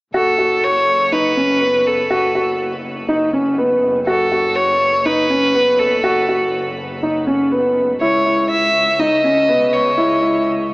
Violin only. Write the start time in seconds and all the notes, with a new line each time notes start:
0.15 A4
0.64 C#5
1.12 B4
1.87 A4
4.07 A4
4.56 C#5
5.05 B4
5.79 A4
8.01 C#5
8.51 E5
9.00 D#5
9.73 C#5